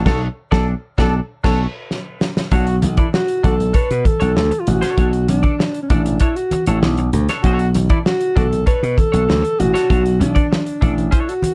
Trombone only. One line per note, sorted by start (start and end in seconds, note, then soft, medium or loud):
0.06 0.22 A4 loud
0.52 0.67 A4 loud
0.99 1.15 A4 loud
1.44 1.60 A4 medium
2.52 2.77 F#4 loud
2.98 3.08 E4 medium
3.44 3.53 F#4 medium
7.43 7.68 F#4 loud
7.90 7.99 E4 medium
8.36 8.45 F#4 medium